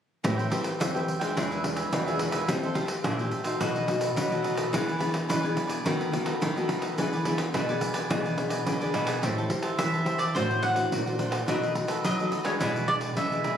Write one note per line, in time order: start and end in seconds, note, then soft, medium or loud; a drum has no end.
0.24 0.48 A2 medium
0.24 0.78 A3 medium
0.24 0.41 C4 medium
0.24 0.41 G4 medium
0.24 0.37 A4 medium
0.24 0.41 B4 medium
0.24 0.37 C5 soft
0.24 0.37 E5 soft
0.24 0.36 G5 medium
0.24 pandeiro medium
0.38 0.49 C5 medium
0.38 0.50 E5 medium
0.38 0.51 G5 medium
0.38 pandeiro soft
0.50 0.78 C4 medium
0.50 0.78 G4 medium
0.50 0.63 A4 medium
0.50 0.78 B4 medium
0.50 0.63 C5 medium
0.50 0.64 E5 medium
0.50 0.64 G5 medium
0.50 pandeiro medium
0.64 muted cavaquinho stroke soft
0.64 pandeiro medium
0.79 1.04 F2 medium
0.79 1.33 E3 medium
0.79 0.92 A4 soft
0.79 0.93 C5 medium
0.79 0.93 E5 medium
0.79 0.93 G5 medium
0.79 pandeiro medium
0.94 1.18 C4 medium
0.94 1.18 G4 medium
0.94 1.18 B4 medium
0.94 1.21 C5 medium
0.94 1.19 E5 medium
0.94 1.18 G5 medium
0.94 pandeiro soft
1.08 pandeiro medium
1.20 1.59 G#3 medium
1.20 1.59 D4 medium
1.20 1.59 F4 medium
1.20 1.35 C5 medium
1.20 1.34 E5 medium
1.20 1.34 G5 medium
1.20 pandeiro medium
1.36 1.84 E2 medium
1.36 1.89 E3 medium
1.36 1.49 D4 medium
1.36 1.49 G#4 medium
1.36 1.50 B4 soft
1.36 1.50 E5 medium
1.36 pandeiro medium
1.51 1.63 G#4 medium
1.51 1.63 B4 medium
1.51 1.63 E5 medium
1.51 pandeiro soft
1.63 1.90 G#3 medium
1.63 1.90 D4 soft
1.63 1.90 F4 medium
1.63 muted cavaquinho stroke soft
1.63 pandeiro medium
1.76 2.05 G#4 medium
1.76 2.04 B4 medium
1.76 2.04 E5 medium
1.76 pandeiro medium
1.93 2.40 E2 medium
1.93 2.46 B2 medium
1.93 pandeiro medium
2.06 2.44 G#3 medium
2.06 2.44 D4 medium
2.06 2.44 F4 medium
2.06 2.18 G#4 medium
2.06 2.19 B4 medium
2.06 2.19 E5 medium
2.06 pandeiro soft
2.19 2.32 D4 medium
2.19 2.33 G#4 medium
2.19 2.31 B4 soft
2.19 2.30 E5 medium
2.19 pandeiro medium
2.31 2.47 G#4 medium
2.31 2.46 B4 medium
2.31 2.46 E5 medium
2.31 pandeiro medium
2.47 2.73 F2 medium
2.47 3.01 F3 medium
2.47 2.64 A3 medium
2.47 2.65 E4 medium
2.47 2.61 F4 soft
2.47 2.65 G4 medium
2.47 2.61 A4 soft
2.47 2.61 C5 medium
2.47 2.61 E5 medium
2.47 pandeiro medium
2.63 2.74 A4 soft
2.63 2.75 C5 medium
2.63 2.75 E5 medium
2.63 pandeiro soft
2.74 3.13 A3 medium
2.74 3.13 E4 medium
2.74 2.86 F4 medium
2.74 3.14 G4 medium
2.74 2.87 A4 medium
2.74 2.87 C5 medium
2.74 2.88 E5 medium
2.74 pandeiro medium
2.88 muted cavaquinho stroke soft
2.88 pandeiro medium
3.03 3.29 A#2 medium
3.03 3.58 C3 medium
3.03 3.16 F4 medium
3.03 3.17 A4 medium
3.03 3.17 C5 medium
3.03 3.17 E5 medium
3.03 pandeiro medium
3.18 3.43 A3 medium
3.18 3.43 E4 medium
3.18 3.43 G4 medium
3.18 3.45 A4 medium
3.18 3.44 C5 medium
3.18 3.43 E5 medium
3.18 pandeiro soft
3.31 pandeiro medium
3.44 3.83 A3 medium
3.44 3.83 D#4 medium
3.44 3.84 F#4 medium
3.44 3.59 A4 medium
3.44 3.59 C5 medium
3.44 3.58 E5 medium
3.44 pandeiro medium
3.59 4.08 B2 loud
3.59 4.14 B2 medium
3.59 3.73 D#4 soft
3.59 3.73 A4 medium
3.59 3.74 B4 medium
3.59 3.73 D#5 soft
3.59 pandeiro medium
3.75 3.86 A4 medium
3.75 3.86 B4 medium
3.75 3.87 D#5 medium
3.75 pandeiro soft
3.87 4.26 A3 medium
3.87 4.26 D#4 medium
3.87 4.27 F#4 medium
3.87 muted cavaquinho stroke soft
3.87 pandeiro medium
4.00 4.29 A4 soft
4.00 4.29 B4 medium
4.00 4.28 D#5 medium
4.00 pandeiro medium
4.16 4.64 B2 medium
4.16 4.70 F#3 medium
4.16 pandeiro medium
4.31 4.69 A3 medium
4.31 4.69 D#4 medium
4.31 4.69 F#4 medium
4.31 4.43 A4 medium
4.31 4.43 B4 medium
4.31 4.44 D#5 medium
4.31 pandeiro soft
4.43 4.57 D#4 medium
4.43 4.56 A4 medium
4.43 4.55 B4 medium
4.43 4.54 D#5 medium
4.43 pandeiro medium
4.55 4.71 A4 medium
4.55 4.71 B4 medium
4.55 4.70 D#5 medium
4.55 pandeiro medium
4.72 4.97 E3 loud
4.72 5.26 E3 medium
4.72 4.90 B3 medium
4.72 4.90 D4 medium
4.72 4.85 E4 soft
4.72 4.86 G#4 soft
4.72 4.90 G#4 medium
4.72 4.86 B4 soft
4.72 4.85 D5 medium
4.72 pandeiro medium
4.86 4.98 G#4 medium
4.86 4.98 B4 medium
4.86 4.99 D5 medium
4.86 pandeiro soft
4.98 5.38 B3 medium
4.98 5.38 D4 medium
4.98 5.10 E4 medium
4.98 5.11 G#4 medium
4.98 5.38 G#4 medium
4.98 5.11 B4 medium
4.98 5.12 D5 medium
4.98 pandeiro medium
5.12 muted cavaquinho stroke soft
5.12 pandeiro medium
5.27 5.82 B2 medium
5.27 5.53 E3 medium
5.27 5.41 E4 medium
5.27 5.42 G#4 soft
5.27 5.42 B4 medium
5.27 5.41 D5 medium
5.27 pandeiro medium
5.42 5.81 B3 medium
5.42 5.81 D4 medium
5.42 5.69 G#4 medium
5.42 5.81 G#4 medium
5.42 5.67 B4 medium
5.42 5.66 D5 medium
5.42 pandeiro soft
5.57 pandeiro medium
5.67 5.83 G#4 medium
5.67 5.83 B4 medium
5.67 5.82 D5 medium
5.67 pandeiro medium
5.84 6.38 D#3 medium
5.84 6.33 D#3 loud
5.84 6.08 A3 medium
5.84 6.09 B3 medium
5.84 5.98 D#4 medium
5.84 6.09 F#4 medium
5.84 5.98 A4 soft
5.84 5.99 B4 medium
5.84 5.98 D#5 soft
5.84 pandeiro medium
5.99 6.10 A4 medium
5.99 6.11 B4 medium
5.99 6.11 D#5 medium
5.99 pandeiro soft
6.11 6.39 A3 medium
6.11 6.39 B3 medium
6.11 6.39 F#4 medium
6.11 muted cavaquinho stroke soft
6.11 pandeiro medium
6.25 6.54 A4 medium
6.25 6.54 B4 medium
6.25 6.53 D#5 medium
6.25 pandeiro medium
6.41 6.95 D#3 medium
6.41 6.89 D#3 loud
6.41 pandeiro medium
6.56 6.94 A3 medium
6.56 6.94 B3 medium
6.56 6.94 F#4 medium
6.56 6.68 A4 medium
6.56 6.68 B4 medium
6.56 6.69 D#5 medium
6.56 pandeiro soft
6.68 6.82 D#4 medium
6.68 6.82 A4 medium
6.68 6.82 B4 medium
6.68 6.81 D#5 medium
6.68 pandeiro medium
6.82 6.97 A4 medium
6.82 6.96 B4 medium
6.82 6.96 D#5 medium
6.82 pandeiro medium
6.98 7.21 E3 medium
6.98 7.51 E3 medium
6.98 7.14 B3 medium
6.98 7.15 D4 medium
6.98 7.11 E4 medium
6.98 7.11 G#4 soft
6.98 7.15 G#4 medium
6.98 7.12 B4 medium
6.98 7.12 D5 soft
6.98 pandeiro medium
7.13 7.25 G#4 medium
7.13 7.26 B4 medium
7.13 7.25 D5 medium
7.13 pandeiro soft
7.25 7.63 B3 medium
7.25 7.63 D4 medium
7.25 7.37 E4 medium
7.25 7.38 G#4 medium
7.25 7.64 G#4 medium
7.25 7.39 B4 medium
7.25 7.39 D5 medium
7.25 pandeiro medium
7.38 muted cavaquinho stroke soft
7.38 pandeiro medium
7.54 7.78 B2 medium
7.54 8.08 B2 medium
7.54 7.67 E4 soft
7.54 7.67 G#4 medium
7.54 7.68 B4 medium
7.54 7.68 D5 medium
7.54 pandeiro medium
7.69 8.06 B3 medium
7.69 8.07 D4 soft
7.69 8.07 G#4 medium
7.69 7.95 G#4 medium
7.69 7.94 B4 medium
7.69 7.92 D5 medium
7.69 pandeiro soft
7.81 pandeiro medium
7.94 8.09 G#4 medium
7.94 8.08 B4 medium
7.94 8.08 D5 medium
7.94 pandeiro medium
8.10 8.58 B2 loud
8.10 8.64 E3 medium
8.10 8.34 B3 medium
8.10 8.34 D4 medium
8.10 8.23 E4 soft
8.10 8.23 G#4 soft
8.10 8.34 G#4 medium
8.10 8.24 B4 soft
8.10 8.23 D5 medium
8.10 pandeiro medium
8.24 8.36 G#4 medium
8.24 8.37 B4 medium
8.24 8.37 D5 medium
8.24 pandeiro soft
8.37 8.76 B3 medium
8.37 8.76 D4 medium
8.37 8.76 G#4 medium
8.37 muted cavaquinho stroke soft
8.37 pandeiro medium
8.49 8.79 G#4 medium
8.49 8.79 B4 medium
8.49 8.78 D5 medium
8.49 pandeiro medium
8.66 9.20 B2 medium
8.66 8.92 D3 medium
8.66 pandeiro medium
8.81 9.19 B3 medium
8.81 9.19 D4 medium
8.81 9.19 G#4 medium
8.81 8.93 G#4 soft
8.81 8.93 B4 medium
8.81 8.93 D5 medium
8.81 pandeiro soft
8.93 9.20 B2 medium
8.93 9.07 E4 soft
8.93 9.07 G#4 soft
8.93 9.05 B4 medium
8.93 9.04 D5 medium
8.93 pandeiro medium
9.05 9.21 G#4 medium
9.05 9.21 B4 medium
9.05 9.20 D5 medium
9.05 pandeiro medium
9.22 9.47 A2 medium
9.22 9.76 A3 medium
9.22 9.46 E4 medium
9.22 9.35 G4 medium
9.22 9.47 G4 medium
9.22 9.36 C5 medium
9.22 9.47 C5 medium
9.22 9.36 E5 medium
9.22 9.36 A5 medium
9.22 pandeiro medium
9.38 9.49 C5 soft
9.38 9.49 E5 soft
9.38 9.50 A5 soft
9.38 pandeiro soft
9.50 10.02 E4 medium
9.50 10.02 G4 soft
9.50 10.03 C5 medium
9.50 muted cavaquinho stroke soft
9.50 pandeiro medium
9.62 9.92 C5 medium
9.62 9.91 E5 medium
9.62 9.91 A5 medium
9.62 pandeiro medium
9.78 10.32 E3 medium
9.78 10.03 E3 medium
9.78 10.18 E5 medium
9.78 pandeiro medium
9.93 10.05 C5 soft
9.93 10.06 E5 soft
9.93 10.06 A5 medium
9.93 pandeiro soft
10.05 10.22 E4 soft
10.05 10.22 G4 soft
10.05 10.19 G4 soft
10.05 10.23 C5 medium
10.05 10.19 C5 medium
10.05 10.19 E5 medium
10.05 10.17 A5 medium
10.05 pandeiro medium
10.18 10.34 C5 medium
10.18 10.33 D5 medium
10.18 10.33 E5 medium
10.18 10.33 A5 medium
10.18 pandeiro medium
10.34 10.84 A2 loud
10.34 10.89 A3 medium
10.34 10.48 D4 medium
10.34 10.73 D4 medium
10.34 10.73 F#4 medium
10.34 10.61 C5 medium
10.34 10.48 C5 medium
10.34 10.74 C5 medium
10.34 10.48 D5 medium
10.34 10.48 F#5 medium
10.34 pandeiro medium
10.49 10.61 C5 soft
10.49 10.61 D5 soft
10.49 10.62 F#5 soft
10.49 pandeiro soft
10.62 11.15 F#5 loud
10.62 muted cavaquinho stroke soft
10.62 pandeiro medium
10.74 11.00 D4 medium
10.74 11.00 F#4 medium
10.74 11.00 C5 medium
10.74 11.04 C5 soft
10.74 11.04 D5 medium
10.74 11.03 F#5 medium
10.74 pandeiro medium
10.91 11.40 A#2 medium
10.91 11.45 A3 soft
10.91 pandeiro medium
11.06 11.16 D4 medium
11.06 11.16 F#4 soft
11.06 11.16 C5 medium
11.06 11.18 C5 soft
11.06 11.19 D5 soft
11.06 11.19 F#5 soft
11.06 pandeiro soft
11.18 11.32 D4 soft
11.18 11.37 D4 medium
11.18 11.38 F#4 medium
11.18 11.32 C5 soft
11.18 11.38 C5 medium
11.18 11.31 D5 medium
11.18 11.30 F#5 soft
11.18 pandeiro medium
11.31 11.46 C5 medium
11.31 11.46 D5 medium
11.31 11.45 F#5 medium
11.31 pandeiro medium
11.47 12.01 B2 medium
11.47 11.72 B2 loud
11.47 11.65 A3 medium
11.47 11.60 D#4 medium
11.47 11.65 D#4 medium
11.47 11.65 F#4 medium
11.47 11.61 A4 medium
11.47 11.61 B4 medium
11.47 11.61 D#5 medium
11.47 pandeiro medium
11.62 11.74 A4 soft
11.62 11.75 B4 soft
11.62 11.75 D#5 soft
11.62 pandeiro soft
11.75 12.02 A3 medium
11.75 12.02 D#4 medium
11.75 12.03 F#4 medium
11.75 muted cavaquinho stroke soft
11.75 pandeiro medium
11.88 12.17 A4 medium
11.88 12.16 B4 medium
11.88 12.16 D#5 medium
11.88 pandeiro medium
12.04 12.29 F#3 medium
12.04 12.58 F#3 medium
12.04 12.45 D#5 medium
12.04 pandeiro medium
12.18 12.43 A3 medium
12.18 12.43 D#4 medium
12.18 12.44 F#4 medium
12.18 12.30 A4 soft
12.18 12.31 B4 soft
12.18 12.31 D#5 soft
12.18 pandeiro soft
12.30 12.44 D#4 soft
12.30 12.45 A4 medium
12.30 12.44 B4 medium
12.30 12.43 D#5 medium
12.30 pandeiro medium
12.44 12.83 G#3 medium
12.44 12.84 D4 medium
12.44 12.84 E4 medium
12.44 12.59 A4 medium
12.44 12.59 B4 medium
12.44 12.50 C#5 medium
12.44 12.58 D#5 medium
12.44 pandeiro medium
12.60 13.09 B2 loud
12.60 13.15 B2 medium
12.60 12.73 E4 medium
12.60 12.74 G#4 medium
12.60 12.87 B4 medium
12.60 12.74 B4 medium
12.60 12.74 D5 medium
12.60 pandeiro medium
12.75 12.87 G#4 soft
12.75 12.87 B4 soft
12.75 12.88 D5 soft
12.75 pandeiro soft
12.88 13.26 G#3 medium
12.88 13.26 D4 medium
12.88 13.27 E4 soft
12.88 12.96 D5 loud
12.88 muted cavaquinho stroke soft
12.88 pandeiro medium
13.00 13.30 G#4 medium
13.00 13.29 B4 medium
13.00 13.29 D5 medium
13.00 pandeiro medium
13.16 13.57 B2 medium
13.16 13.57 B2 loud
13.16 13.56 E5 loud
13.16 pandeiro medium
13.31 13.57 G#3 medium
13.31 13.57 D4 soft
13.31 13.57 E4 medium
13.31 13.44 G#4 soft
13.31 13.44 B4 soft
13.31 13.44 D5 soft
13.31 pandeiro soft
13.44 13.57 E4 soft
13.44 13.57 G#4 medium
13.44 13.57 B4 soft
13.44 13.56 D5 medium
13.44 pandeiro medium